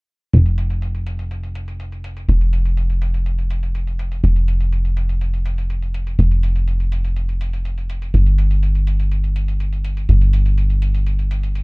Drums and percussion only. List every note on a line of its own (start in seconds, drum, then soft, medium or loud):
0.33 closed hi-hat soft
0.46 closed hi-hat soft
0.58 closed hi-hat medium
0.70 closed hi-hat soft
0.82 closed hi-hat soft
0.95 closed hi-hat soft
1.07 closed hi-hat medium
1.19 closed hi-hat soft
1.31 closed hi-hat soft
1.43 closed hi-hat soft
1.55 closed hi-hat medium
1.68 closed hi-hat soft
1.80 closed hi-hat soft
1.92 closed hi-hat soft
2.04 closed hi-hat medium
2.17 closed hi-hat soft
2.29 closed hi-hat soft
2.41 closed hi-hat soft
2.53 closed hi-hat medium
2.65 closed hi-hat soft
2.77 closed hi-hat soft
2.90 closed hi-hat soft
3.02 closed hi-hat medium
3.14 closed hi-hat soft
3.26 closed hi-hat soft
3.39 closed hi-hat soft
3.50 closed hi-hat medium
3.63 closed hi-hat soft
3.75 closed hi-hat soft
3.87 closed hi-hat soft
3.99 closed hi-hat medium
4.12 closed hi-hat soft
4.24 closed hi-hat soft
4.36 closed hi-hat soft
4.48 closed hi-hat medium
4.61 closed hi-hat soft
4.72 closed hi-hat soft
4.85 closed hi-hat soft
4.97 closed hi-hat medium
5.09 closed hi-hat soft
5.21 closed hi-hat soft
5.34 closed hi-hat soft
5.46 closed hi-hat medium
5.58 closed hi-hat soft
5.70 closed hi-hat soft
5.82 closed hi-hat soft
5.94 closed hi-hat medium
6.07 closed hi-hat soft
6.19 closed hi-hat soft
6.31 closed hi-hat soft
6.43 closed hi-hat medium
6.56 closed hi-hat soft
6.68 closed hi-hat soft
6.80 closed hi-hat soft
6.92 closed hi-hat medium
7.04 closed hi-hat soft
7.16 closed hi-hat soft
7.29 closed hi-hat soft
7.41 closed hi-hat medium
7.53 closed hi-hat soft
7.65 closed hi-hat soft
7.78 closed hi-hat soft
7.90 closed hi-hat medium
8.02 closed hi-hat soft
8.14 closed hi-hat soft
8.26 closed hi-hat soft
8.38 closed hi-hat medium
8.51 closed hi-hat soft
8.63 closed hi-hat soft
8.75 closed hi-hat soft
8.87 closed hi-hat medium
9.00 closed hi-hat soft
9.12 closed hi-hat soft
9.24 closed hi-hat soft
9.36 closed hi-hat medium
9.48 closed hi-hat soft
9.60 closed hi-hat soft
9.73 closed hi-hat soft
9.85 closed hi-hat medium
9.97 closed hi-hat soft
10.09 closed hi-hat soft
10.21 closed hi-hat soft
10.33 closed hi-hat medium
10.46 closed hi-hat soft
10.58 closed hi-hat soft
10.70 closed hi-hat soft
10.82 closed hi-hat medium
10.95 closed hi-hat soft
11.06 closed hi-hat soft
11.19 closed hi-hat soft
11.31 closed hi-hat medium
11.43 closed hi-hat soft
11.55 closed hi-hat soft